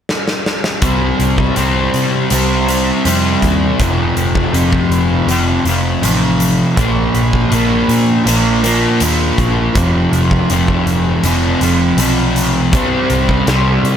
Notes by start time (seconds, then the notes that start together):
0.09 snare
0.28 snare
0.46 snare
0.64 snare
0.82 C2 C3 G3 C4, kick, closed hi-hat
1.19 C2, closed hi-hat
1.38 kick
1.56 C2 C3 G3 C4, closed hi-hat
1.94 C3, closed hi-hat
2.30 C2 C3 G3 C4, closed hi-hat
2.68 G3 C4, closed hi-hat
3.05 F2 C3 G3 C4, closed hi-hat
3.42 D#2, kick, closed hi-hat
3.79 F1 F2 C3 F3, kick, closed hi-hat
4.17 F1, closed hi-hat
4.35 kick
4.53 F1 F2 C3 F3, closed hi-hat
4.73 kick
4.90 F1, closed hi-hat
5.27 F1 F2 C3 F3, closed hi-hat
5.65 F1 C3 F3, closed hi-hat
6.02 A1 F2 C3 F3, closed hi-hat
6.40 closed hi-hat
6.76 A#1 A#2 F3 A#3, kick, closed hi-hat
7.14 A#1, closed hi-hat
7.33 kick
7.50 A#1 A#2 F3 A#3, closed hi-hat
7.88 A#2, closed hi-hat
8.25 A#1 A#2 F3 A#3, closed hi-hat
8.63 F3 A#3, closed hi-hat
9.00 D#2 A#2 F3 A#3, closed hi-hat
9.38 A#1, kick, closed hi-hat
9.75 F1 F2 C3 F3, kick, closed hi-hat
10.13 F1, closed hi-hat
10.31 kick
10.50 F1 F2 C3, closed hi-hat
10.54 F3
10.68 kick
10.86 F1, closed hi-hat
11.24 F1 F2 C3 F3, closed hi-hat
11.61 F1 C3 F3, closed hi-hat
11.97 B1 F2 C3, closed hi-hat
12.02 F3
12.36 closed hi-hat
12.73 C2 C3 G3 C4, kick, closed hi-hat
13.10 C2, closed hi-hat
13.29 kick
13.47 C2 C3 G3 C4, snare, closed hi-hat
13.84 C3, closed hi-hat